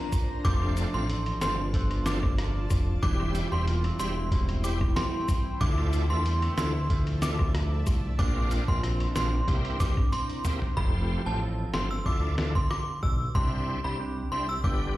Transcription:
Already playing: clean electric guitar A#3 F4 A#4 D5, ambient pad D4 C5 A#5, synth bell A#5
0.12 kick, closed hi-hat, cabasa, high woodblock
0.44 analog synth bass F1, clean electric guitar F3 C5, tonewheel organ A3 C4 D4 F4, ambient pad F4 D5 A5, synth bell D6, kick, closed hi-hat
0.62 high woodblock
0.77 clean electric guitar D4, closed hi-hat, cabasa
0.94 analog synth bass A1, tonewheel organ A3 C4 D4 F4, synth bell C6
1.09 clean electric guitar A4, closed hi-hat
1.26 closed hi-hat, high woodblock
1.41 analog synth bass G1, tonewheel organ A3 C4 D4 F4, clean electric guitar C5, synth bell C6, snare, closed hi-hat, cabasa
1.74 clean electric guitar D4 A4 C5, kick, closed hi-hat
1.91 closed hi-hat, high woodblock
2.06 tonewheel organ A3 C4 D4 F4, synth bell D6, snare, closed hi-hat, cabasa
2.23 kick, high woodblock
2.38 cross-stick, closed hi-hat
2.70 analog synth bass F1, kick, closed hi-hat, cabasa, high woodblock
3.02 analog synth bass E1, clean electric guitar E3 E4, tonewheel organ G3 C4 E4 G4, ambient pad E4 C5 G5, synth bell D6, kick, closed hi-hat
3.20 high woodblock
3.35 clean electric guitar G3, closed hi-hat, cabasa
3.52 analog synth bass E1, tonewheel organ G3 C4 E4 G4, synth bell C6
3.67 clean electric guitar A#3, closed hi-hat
3.84 clean electric guitar C4, closed hi-hat, high woodblock
3.99 analog synth bass E1, tonewheel organ G3 C4 E4 G4, clean electric guitar E4, synth bell C6, closed hi-hat, cabasa
4.32 clean electric guitar G3 C4 E4, kick, closed hi-hat
4.49 closed hi-hat, high woodblock
4.64 tonewheel organ G3 C4 E4 G4, synth bell D6, closed hi-hat, cabasa
4.81 kick, high woodblock
4.96 synth bell C6, cross-stick, snare, closed hi-hat
5.28 kick, closed hi-hat, cabasa, high woodblock
5.61 analog synth bass D2, clean electric guitar D3 E4, tonewheel organ A3 D4 E4 F4, ambient pad D5 E5 A5, synth bell D6, kick, closed hi-hat
5.78 high woodblock
5.93 closed hi-hat, cabasa
6.10 analog synth bass E2, tonewheel organ A3 D4 E4 F4, synth bell C6
6.25 clean electric guitar G3, closed hi-hat
6.42 clean electric guitar A3, closed hi-hat, high woodblock
6.57 analog synth bass D2, tonewheel organ A3 D4 E4 F4, clean electric guitar E4, synth bell C6, snare, closed hi-hat, cabasa
6.90 clean electric guitar F3 A3 E4, kick, closed hi-hat
7.07 closed hi-hat, high woodblock
7.22 tonewheel organ A3 D4 E4 F4, synth bell D6, snare, closed hi-hat, cabasa
7.39 kick, high woodblock
7.55 cross-stick, closed hi-hat
7.86 analog synth bass C2, kick, closed hi-hat, cabasa, high woodblock
8.19 analog synth bass A#1, clean electric guitar A#2 D4, tonewheel organ A#3 C4 D4 F4, ambient pad A#5, synth bell D6, kick, closed hi-hat
8.36 high woodblock
8.51 clean electric guitar F3, closed hi-hat, cabasa
8.68 analog synth bass A#1, tonewheel organ A#3 C4 D4 F4, synth bell C6, kick
8.83 clean electric guitar C4, cross-stick, closed hi-hat
9.00 closed hi-hat, high woodblock
9.15 analog synth bass A#1, tonewheel organ A#3 C4 D4 F4, clean electric guitar D4, synth bell C6, snare, closed hi-hat, cabasa
9.48 analog synth bass C2, clean electric guitar C3, tonewheel organ A#3 C4 E4 G4, kick, closed hi-hat
9.65 closed hi-hat, high woodblock
9.80 tonewheel organ A#3 C4 E4 G4, synth bell D6, kick, snare, closed hi-hat, cabasa
9.97 kick, high woodblock
10.12 synth bell C6, closed hi-hat, high tom
10.30 closed hi-hat
10.44 tonewheel organ A#3 C4 E4 G4, closed hi-hat, mid tom, cabasa, high woodblock
10.62 floor tom
10.77 analog synth bass F1, clean electric guitar F3, tonewheel organ A3 C4 F4 G4, synth bell B5, kick
11.26 analog synth bass A1, tonewheel organ A3 C4 F4 G4, synth bell A5
11.41 clean electric guitar C4 F4 A4
11.73 analog synth bass G1, tonewheel organ A3 C4 F4 G4, clean electric guitar C4, synth bell C6, snare
11.91 synth bell E6
12.06 analog synth bass D2, clean electric guitar D3, tonewheel organ A3 D4 E4 F4, synth bell D6, kick
12.38 tonewheel organ A3 D4 E4 F4, snare
12.55 synth bell C6, kick
12.71 synth bell D6, cross-stick
13.03 analog synth bass B1, synth bell E6, kick
13.35 analog synth bass C2, clean electric guitar C3, tonewheel organ G3 C4 D4 E4, synth bell C6, kick
13.84 analog synth bass C2, tonewheel organ G3 C4 D4 E4, synth bell B5
14.00 clean electric guitar C4 D4 G4
14.32 analog synth bass C2, tonewheel organ G3 C4 D4 E4, clean electric guitar C4, synth bell C6
14.49 synth bell E6
14.64 analog synth bass G1, tonewheel organ G3 B3 D4 G4, clean electric guitar G3, synth bell D6, kick

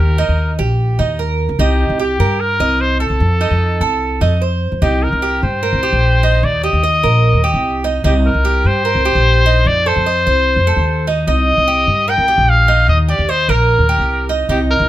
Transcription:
Already playing: cuban tres G4
0.00 upright bass D#2, trumpet A#4
0.18 cuban tres D#4
0.29 upright bass D#2
0.59 upright bass A#1, cuban tres G4
0.99 upright bass D#2, cuban tres D#4
1.19 cuban tres A#4
1.49 upright bass C#2
1.59 upright bass C2, cuban tres D#4, trumpet G4
1.89 upright bass C2
1.99 cuban tres G4, trumpet G4
2.19 upright bass G2, cuban tres A#4
2.40 trumpet A#4
2.60 upright bass C2, cuban tres D#5
2.81 trumpet C5
3.00 cuban tres A4, trumpet A4
3.10 upright bass C2
3.20 upright bass F2
3.41 cuban tres D#4
3.51 upright bass F2
3.81 upright bass C2, cuban tres A4
4.21 upright bass F2, cuban tres D#4
4.42 cuban tres C5
4.72 upright bass F2
4.82 upright bass C2, cuban tres D#4, trumpet G4
5.03 trumpet A#4
5.12 upright bass C2
5.22 cuban tres G4
5.43 upright bass G2, trumpet C5
5.63 cuban tres A#4
5.73 upright bass C2
5.83 cuban tres G4
5.92 upright bass A#1
6.23 cuban tres D#4
6.43 upright bass D#2, trumpet D5
6.63 cuban tres G4, trumpet D#5
6.73 upright bass D#2
6.83 cuban tres D#5
7.03 upright bass A#1, cuban tres A#4
7.33 upright bass D#2
7.44 cuban tres G4
7.54 upright bass C2
7.84 cuban tres D#4
8.04 upright bass C2, cuban tres D#4, trumpet G4
8.26 trumpet A#4
8.34 upright bass C2
8.45 cuban tres G4
8.65 upright bass G2, trumpet C5
8.85 cuban tres A#4
8.95 upright bass C2
9.05 cuban tres G4
9.15 upright bass A#1
9.46 cuban tres D#4
9.66 upright bass F2, trumpet D5
9.86 cuban tres A4, trumpet C5
9.96 upright bass F2
10.06 cuban tres D#5
10.27 upright bass C2, cuban tres C5
10.56 upright bass F2
10.67 cuban tres A4
10.76 upright bass D#2
11.07 cuban tres D#4
11.27 upright bass C2, cuban tres D#4, trumpet D#5
11.57 upright bass C2
11.68 cuban tres G4
11.87 upright bass G2
12.08 cuban tres A#4, trumpet G5
12.18 upright bass C2
12.28 cuban tres G4
12.38 upright bass A#1
12.49 trumpet F5
12.68 cuban tres D#4
12.88 upright bass D#2, trumpet D#5
13.08 cuban tres G4, trumpet D5
13.19 upright bass D#2
13.29 trumpet C5, cuban tres D#5
13.48 upright bass A#1, cuban tres A#4, trumpet A#4
13.79 upright bass D#2
13.89 cuban tres G4
13.99 upright bass C2
14.29 cuban tres D#4
14.49 upright bass C2, cuban tres D#4, trumpet G4
14.70 trumpet A#4
14.80 upright bass C2

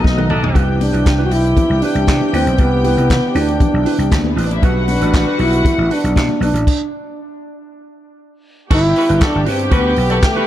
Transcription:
Already playing: french horn section D#3 A3 B3 F#4, trombone B3, string section D#4 D#5
0.04 slap bass B1, muted clean electric guitar stroke, kick, snare, high conga
0.17 clean electric guitar D#4 A4 B4, high tom, high conga
0.30 slap bass B1, horn section E3 D4 A4, mid tom
0.42 muted clean electric guitar stroke, floor tom
0.54 slap bass C2, french horn section C3 E3 B3 D4, clean electric guitar D4 E4 B4, string section G4 G5, kick, closed hi-hat, muted conga
0.81 trombone D4, open hi-hat, muted conga
0.93 slap bass B1, clean electric guitar D4 E4 B4, closed hi-hat
1.06 slap bass C2, kick, snare, clap, closed hi-hat, high conga
1.18 clean electric guitar D4 E4 B4
1.25 trombone F#4
1.31 slap bass B1, trombone E4, open hi-hat
1.44 muted clean electric guitar stroke, closed hi-hat
1.57 muted clean electric guitar stroke, kick, closed hi-hat, muted conga, low conga
1.70 slap bass C2, muted clean electric guitar stroke
1.82 trombone D4, clean electric guitar D4 E4 B4, open hi-hat, muted conga
1.95 slap bass C2, closed hi-hat
2.07 slap bass C3, muted clean electric guitar stroke, kick, snare, clap, closed hi-hat, high conga
2.21 muted clean electric guitar stroke, high conga
2.33 slap bass D2, trombone C4, clean electric guitar D4 E4 B4, open hi-hat, high conga
2.46 slap bass B1, muted clean electric guitar stroke, closed hi-hat
2.58 slap bass C2, trombone B3, clean electric guitar D4 E4 B4, kick, closed hi-hat, muted conga
2.84 clean electric guitar D4 E4 B4, open hi-hat, muted conga
2.97 slap bass C2, clean electric guitar D4 E4 B4, closed hi-hat
3.10 kick, snare, clap, closed hi-hat, high conga
3.24 muted clean electric guitar stroke
3.35 slap bass D2, clean electric guitar D4 E4 B4, trombone D4, open hi-hat
3.48 closed hi-hat
3.60 kick, closed hi-hat, muted conga, low conga
3.74 slap bass B1, muted clean electric guitar stroke
3.86 clean electric guitar D4 E4 B4, open hi-hat, muted conga
3.98 slap bass C2, closed hi-hat
4.11 slap bass D2, muted clean electric guitar stroke, kick, snare, clap, closed hi-hat, high conga
4.24 muted clean electric guitar stroke, high conga
4.29 string section B3 B4
4.36 slap bass A1, string section C4 C5, clean electric guitar D4 E4 B4, open hi-hat, high conga
4.45 string section D4 D5
4.51 string section E4 E5, muted clean electric guitar stroke, closed hi-hat
4.62 slap bass B1, french horn section D3 G3 F#4, horn section G3 F#4 B4, clean electric guitar D4 F#4 B4, string section F#4 F#5, kick, closed hi-hat, muted conga
4.88 trombone D4, muted clean electric guitar stroke, open hi-hat, muted conga
5.01 slap bass A1, clean electric guitar D4 F#4 B4, closed hi-hat
5.13 kick, snare, clap, closed hi-hat, high conga
5.27 clean electric guitar D4 F#4 B4
5.39 slap bass B1, trombone E4, muted clean electric guitar stroke, open hi-hat
5.53 muted clean electric guitar stroke, closed hi-hat
5.65 muted clean electric guitar stroke, kick, closed hi-hat, muted conga, low conga
5.78 slap bass A1, muted clean electric guitar stroke
5.91 clean electric guitar D4 F#4 B4, trombone D4, open hi-hat, muted conga
6.04 slap bass B1, muted clean electric guitar stroke, closed hi-hat
6.16 slap bass B2, muted clean electric guitar stroke, kick, snare, clap, closed hi-hat, high conga
6.29 muted clean electric guitar stroke, high conga
6.40 slap bass B1, clean electric guitar D4 F#4 B4, trombone D4, open hi-hat, high conga
6.53 slap bass A1, muted clean electric guitar stroke, closed hi-hat
6.67 kick, crash
8.69 slap bass G1, french horn section D3 G3 B3 G4, horn section A3 F#4 A4, clean electric guitar D4 F#4 B4, string section G4 G5, kick, crash
8.75 trombone E4
8.84 muted clean electric guitar stroke
8.96 horn section G3 F#4 B4, muted clean electric guitar stroke, open hi-hat
9.09 slap bass G1, clean electric guitar D4 F#4 B4, closed hi-hat
9.21 horn section A3 F#4 A4, kick, snare, clap, closed hi-hat
9.26 trombone D4
9.35 slap bass G1, muted clean electric guitar stroke
9.46 slap bass G2, clean electric guitar D4 F#4 B4, open hi-hat
9.51 trombone C4
9.59 muted clean electric guitar stroke, closed hi-hat
9.70 slap bass D2, horn section G3 F#4 B4, clean electric guitar D4 F#4 B4, kick, closed hi-hat
9.77 trombone B3
9.85 horn section G3 F#4 B4, muted clean electric guitar stroke
9.96 slap bass B1, muted clean electric guitar stroke, open hi-hat
10.10 horn section A3 F#4 A4, clean electric guitar D4 F#4 D5, closed hi-hat
10.22 muted clean electric guitar stroke, kick, snare, clap, closed hi-hat
10.27 trombone A3
10.36 horn section G3 F#4 B4, clean electric guitar D4 F#4 B4

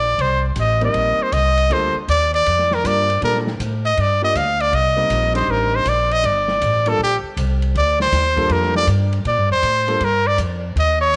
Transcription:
Already playing: upright bass A#1, trumpet D5
0.18 upright bass C2, trumpet C5, kick, ride
0.56 upright bass A1, kick, hi-hat pedal, ride
0.60 trumpet D#5
0.81 grand piano G3 A#3 C4 D#4 A#4, trumpet D#5, ride
0.94 upright bass A#1, kick, ride
1.18 muted upright bass stroke
1.23 trumpet C5
1.32 upright bass C2, trumpet D#5, kick, hi-hat pedal, ride
1.58 ride
1.70 upright bass D2, grand piano G3 A#3 D4 F4 A4, trumpet C5, kick, ride
1.95 muted upright bass stroke
2.08 upright bass D#2, trumpet D5, kick, hi-hat pedal, ride
2.34 trumpet D5, ride
2.46 upright bass F2, kick, ride
2.59 snare
2.71 trumpet A#4, snare
2.83 upright bass G2, grand piano G3 A#3 D4 F4 A#4, kick, hi-hat pedal, ride
2.87 trumpet D5
3.10 ride
3.21 upright bass A#2, grand piano G3 A#3 D4 F4 A4, trumpet A#4, kick, ride
3.35 snare
3.47 snare
3.59 upright bass A2, kick, hi-hat pedal, ride
3.85 trumpet D#5, ride
3.97 upright bass G2, trumpet D5, kick, ride
4.21 grand piano G3 A#3 D4 F4 G4, trumpet D#5
4.35 upright bass D2, trumpet F5, kick, hi-hat pedal, ride
4.60 trumpet D5, ride
4.72 upright bass C2, trumpet D#5, kick, ride
4.97 grand piano G3 A#3 C4 D#4 A#4
5.10 upright bass A#1, kick, hi-hat pedal, ride
5.34 grand piano G3 C4 D4 D#4 C5, trumpet C5, ride
5.47 upright bass A1, trumpet A#4, kick
5.76 trumpet C5
5.85 upright bass A#1, trumpet D5, kick, hi-hat pedal, ride
6.11 trumpet D#5, ride
6.23 upright bass G1, trumpet D5, kick, ride
6.48 snare
6.61 upright bass A1, kick, hi-hat pedal, ride
6.86 grand piano G3 A#3 D4 F4 A4, trumpet A4, ride
6.99 upright bass A#1, kick
7.04 trumpet G4
7.23 muted upright bass stroke
7.37 upright bass C2, kick, hi-hat pedal, ride
7.62 ride
7.75 upright bass D2, trumpet D5, kick, ride
8.00 trumpet C5, snare
8.12 upright bass D#2, kick, snare, hi-hat pedal, ride
8.36 grand piano G3 A#3 D4 F4 A4, kick, ride
8.49 upright bass F2, trumpet A#4, kick, ride
8.62 snare
8.75 trumpet D5, snare
8.87 upright bass G2, kick, hi-hat pedal, ride
9.13 ride
9.25 upright bass A#2, trumpet D5, kick, ride
9.38 upright bass G2
9.50 upright bass F2, trumpet C5
9.63 upright bass A2, kick, hi-hat pedal, ride
9.87 grand piano G3 A#3 D4 F4 A4, ride
10.00 upright bass G2, kick, ride
10.05 trumpet A#4
10.27 trumpet D5
10.38 upright bass F2, kick, hi-hat pedal, ride
10.76 upright bass D#2, trumpet D#5, kick, ride
11.01 trumpet C#5

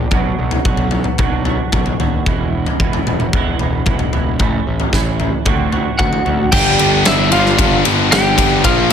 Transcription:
Already playing: clean electric guitar G3 B3 D4
0.11 picked electric bass B1, clean electric guitar B2 F#3 B3 D4 F#4, kick, floor tom
0.39 picked electric bass B1
0.51 floor tom
0.65 picked electric bass B1, clean electric guitar F#3 B3 D4 F#4, kick
0.77 floor tom
0.91 floor tom
1.04 mid tom
1.18 picked electric bass B1, clean electric guitar B2 F#3 B3 D4 F#4, kick, floor tom
1.45 clean electric guitar B3 D4 F#4, floor tom
1.72 picked electric bass B1, clean electric guitar F#3 B3 D4 F#4, kick, floor tom, mid tom
1.86 floor tom
2.00 picked electric bass D#2, clean electric guitar B3 D4 F#4, floor tom
2.26 picked electric bass E1, clean electric guitar E2 B2 E3 G#3 B3 E4, kick, floor tom
2.66 floor tom
2.80 picked electric bass E1, clean electric guitar E3 G#3 B3 E4, kick
2.93 floor tom
3.07 picked electric bass E1, floor tom, mid tom
3.20 mid tom
3.33 picked electric bass E1, clean electric guitar E2 B2 E3 G#3 B3 E4, kick, floor tom
3.59 picked electric bass E1, clean electric guitar E3 G#3 B3 E4, floor tom
3.86 picked electric bass E1, clean electric guitar E3 G#3 B3 E4, kick, floor tom, mid tom
3.99 floor tom
4.12 picked electric bass E1, clean electric guitar E3 G#3 B3 E4, floor tom
4.39 picked electric bass A1, clean electric guitar A2 E3 A3 C#4 E4, kick, floor tom
4.67 picked electric bass A1
4.80 floor tom
4.93 picked electric bass A1, clean electric guitar E3 A3 C#4 E4, kick, snare
5.20 floor tom
5.45 picked electric bass D2, clean electric guitar D3 A3 C4 F#4, kick, floor tom
5.72 clean electric guitar A3 C4 F#4, floor tom
5.99 picked electric bass D2, clean electric guitar D3 A3 C4 F#4, lead electric guitar F#4 F#5, kick, floor tom, mid tom
6.13 floor tom
6.25 picked electric bass D2, clean electric guitar A3 C4 F#4, floor tom
6.52 picked electric bass G1, distorted electric guitar G2 D3 G3 B3 D4, lead electric guitar G4 G5, kick, crash
6.78 picked electric bass G1, distorted electric guitar G2 D3 G3 B3 D4, ride
7.05 picked electric bass G1, distorted electric guitar G2 D3 G3 B3 D4, lead electric guitar E4 E5, snare, ride
7.31 picked electric bass G1, distorted electric guitar G2 D3 G3 B3 D4, lead electric guitar F4 F5, ride
7.46 snare
7.57 picked electric bass G1, distorted electric guitar G2 D3 G3 B3 D4, kick, ride
7.85 picked electric bass G1, distorted electric guitar G2 D3 G3 B3 D4, ride
8.11 picked electric bass G1, distorted electric guitar G2 D3 G3 B3 D4, lead electric guitar G4 G5, snare, ride
8.36 picked electric bass G1, distorted electric guitar G2 D3 G3 B3 D4, kick, ride
8.63 picked electric bass A#1, distorted electric guitar A#2 F3 A#3 D4, lead electric guitar F4 F5, kick, ride
8.90 distorted electric guitar A#2 F3

